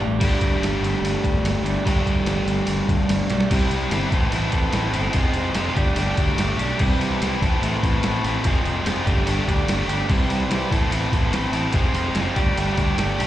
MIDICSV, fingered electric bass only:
0, 0, Header, 1, 2, 480
1, 0, Start_track
1, 0, Tempo, 412088
1, 233, Time_signature, 4, 2, 24, 8
1, 15456, End_track
2, 0, Start_track
2, 0, Title_t, "Fingered electric bass"
2, 0, Program_c, 0, 33
2, 10, Note_on_c, 0, 33, 92
2, 239, Note_off_c, 0, 33, 0
2, 239, Note_on_c, 0, 31, 84
2, 386, Note_off_c, 0, 31, 0
2, 486, Note_on_c, 0, 31, 82
2, 631, Note_off_c, 0, 31, 0
2, 705, Note_on_c, 0, 31, 84
2, 856, Note_off_c, 0, 31, 0
2, 942, Note_on_c, 0, 31, 86
2, 1094, Note_off_c, 0, 31, 0
2, 1185, Note_on_c, 0, 31, 93
2, 1336, Note_off_c, 0, 31, 0
2, 1448, Note_on_c, 0, 31, 86
2, 1592, Note_off_c, 0, 31, 0
2, 1660, Note_on_c, 0, 31, 106
2, 1813, Note_off_c, 0, 31, 0
2, 1890, Note_on_c, 0, 31, 93
2, 2047, Note_off_c, 0, 31, 0
2, 2170, Note_on_c, 0, 31, 88
2, 2314, Note_off_c, 0, 31, 0
2, 2406, Note_on_c, 0, 31, 85
2, 2551, Note_off_c, 0, 31, 0
2, 2625, Note_on_c, 0, 31, 85
2, 2777, Note_off_c, 0, 31, 0
2, 2866, Note_on_c, 0, 31, 92
2, 3017, Note_off_c, 0, 31, 0
2, 3120, Note_on_c, 0, 31, 102
2, 3267, Note_off_c, 0, 31, 0
2, 3361, Note_on_c, 0, 31, 92
2, 3507, Note_off_c, 0, 31, 0
2, 3595, Note_on_c, 0, 31, 92
2, 3744, Note_off_c, 0, 31, 0
2, 3847, Note_on_c, 0, 35, 87
2, 3992, Note_off_c, 0, 35, 0
2, 4085, Note_on_c, 0, 36, 85
2, 4235, Note_off_c, 0, 36, 0
2, 4311, Note_on_c, 0, 36, 82
2, 4465, Note_off_c, 0, 36, 0
2, 4541, Note_on_c, 0, 31, 86
2, 4698, Note_off_c, 0, 31, 0
2, 4797, Note_on_c, 0, 33, 87
2, 4949, Note_off_c, 0, 33, 0
2, 5041, Note_on_c, 0, 33, 92
2, 5192, Note_off_c, 0, 33, 0
2, 5277, Note_on_c, 0, 33, 83
2, 5429, Note_off_c, 0, 33, 0
2, 5511, Note_on_c, 0, 33, 98
2, 5665, Note_off_c, 0, 33, 0
2, 5744, Note_on_c, 0, 31, 85
2, 5900, Note_off_c, 0, 31, 0
2, 5994, Note_on_c, 0, 29, 89
2, 6147, Note_off_c, 0, 29, 0
2, 6215, Note_on_c, 0, 29, 78
2, 6374, Note_off_c, 0, 29, 0
2, 6461, Note_on_c, 0, 29, 84
2, 6619, Note_off_c, 0, 29, 0
2, 6713, Note_on_c, 0, 31, 90
2, 6867, Note_off_c, 0, 31, 0
2, 6930, Note_on_c, 0, 31, 89
2, 7091, Note_off_c, 0, 31, 0
2, 7187, Note_on_c, 0, 38, 90
2, 7343, Note_off_c, 0, 38, 0
2, 7415, Note_on_c, 0, 31, 101
2, 7575, Note_off_c, 0, 31, 0
2, 7645, Note_on_c, 0, 35, 86
2, 7808, Note_off_c, 0, 35, 0
2, 7923, Note_on_c, 0, 36, 88
2, 8073, Note_off_c, 0, 36, 0
2, 8135, Note_on_c, 0, 36, 85
2, 8295, Note_off_c, 0, 36, 0
2, 8399, Note_on_c, 0, 36, 82
2, 8551, Note_off_c, 0, 36, 0
2, 8633, Note_on_c, 0, 33, 87
2, 8787, Note_off_c, 0, 33, 0
2, 8876, Note_on_c, 0, 33, 92
2, 9029, Note_off_c, 0, 33, 0
2, 9121, Note_on_c, 0, 33, 97
2, 9273, Note_off_c, 0, 33, 0
2, 9375, Note_on_c, 0, 33, 102
2, 9522, Note_off_c, 0, 33, 0
2, 9608, Note_on_c, 0, 33, 96
2, 9758, Note_off_c, 0, 33, 0
2, 9844, Note_on_c, 0, 29, 92
2, 9995, Note_off_c, 0, 29, 0
2, 10078, Note_on_c, 0, 29, 85
2, 10231, Note_off_c, 0, 29, 0
2, 10316, Note_on_c, 0, 29, 88
2, 10469, Note_off_c, 0, 29, 0
2, 10558, Note_on_c, 0, 31, 83
2, 10710, Note_off_c, 0, 31, 0
2, 10795, Note_on_c, 0, 31, 91
2, 10949, Note_off_c, 0, 31, 0
2, 11038, Note_on_c, 0, 38, 94
2, 11191, Note_off_c, 0, 38, 0
2, 11261, Note_on_c, 0, 31, 94
2, 11419, Note_off_c, 0, 31, 0
2, 11504, Note_on_c, 0, 31, 88
2, 11661, Note_off_c, 0, 31, 0
2, 11757, Note_on_c, 0, 36, 84
2, 11910, Note_off_c, 0, 36, 0
2, 11990, Note_on_c, 0, 36, 88
2, 12145, Note_off_c, 0, 36, 0
2, 12214, Note_on_c, 0, 36, 77
2, 12374, Note_off_c, 0, 36, 0
2, 12482, Note_on_c, 0, 33, 91
2, 12634, Note_off_c, 0, 33, 0
2, 12692, Note_on_c, 0, 33, 96
2, 12853, Note_off_c, 0, 33, 0
2, 12954, Note_on_c, 0, 33, 92
2, 13108, Note_off_c, 0, 33, 0
2, 13180, Note_on_c, 0, 33, 100
2, 13339, Note_off_c, 0, 33, 0
2, 13416, Note_on_c, 0, 33, 85
2, 13576, Note_off_c, 0, 33, 0
2, 13676, Note_on_c, 0, 29, 90
2, 13830, Note_off_c, 0, 29, 0
2, 13896, Note_on_c, 0, 29, 91
2, 14056, Note_off_c, 0, 29, 0
2, 14148, Note_on_c, 0, 30, 79
2, 14304, Note_off_c, 0, 30, 0
2, 14403, Note_on_c, 0, 31, 92
2, 14554, Note_off_c, 0, 31, 0
2, 14635, Note_on_c, 0, 31, 90
2, 14789, Note_off_c, 0, 31, 0
2, 14874, Note_on_c, 0, 38, 91
2, 15029, Note_off_c, 0, 38, 0
2, 15117, Note_on_c, 0, 31, 102
2, 15271, Note_off_c, 0, 31, 0
2, 15355, Note_on_c, 0, 35, 84
2, 15456, Note_off_c, 0, 35, 0
2, 15456, End_track
0, 0, End_of_file